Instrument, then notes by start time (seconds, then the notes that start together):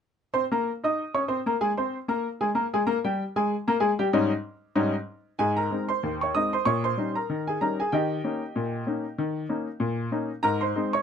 upright piano
0.34 C4 C5 C6
0.52 A#3 A#4 A#5
0.84 D#4 D#5 D#6
1.14 C#4 C#5 C#6
1.28 C4 C5 C6
1.46 A#3 A#4 A#5
1.61 G#3 G#4 G#5
1.77 C4 C5 C6
2.08 A#3 A#4 A#5
2.41 G#3 G#4 G#5
2.55 A#3 A#4 A#5
2.74 G#3 G#4 G#5
2.87 A#3 A#4 A#5
3.04 G3 G4 G5
3.36 G#3 G#4 G#5
3.68 A#3 A#4 A#5
3.80 G#3 G#4 G#5
3.99 G3 G4 G5
4.13 G#2 G3 C#4 D#4
4.75 G#2 G3 C#4 D#4
5.39 G#2 G#4 G#5
5.57 A#4 A#5
5.71 G#3 C4 D#4
5.89 C5 C6
6.03 D#2
6.21 C#5 C#6
6.35 G#3 C4 D#4 D#5 D#6
6.53 C5 C6
6.65 A#2 C#5 C#6
6.84 C5 C6
6.97 G3 C#4 D#4
7.15 A#4 A#5
7.30 D#3
7.47 G#4 G#5
7.61 G3 C#4 D#4 A#4 A#5
7.80 G#4 G#5
7.92 D#3 G4 D#5 G5
8.24 A#3 C#4 D#4
8.56 A#2
8.87 A#3 C#4 D#4
9.18 D#3
9.49 A#3 C#4 D#4
9.80 A#2
10.12 A#3 C#4 D#4
10.43 G#2 A#4 A#5
10.61 C5 C6
10.76 G#3 C4 D#4
10.93 C#5 C#6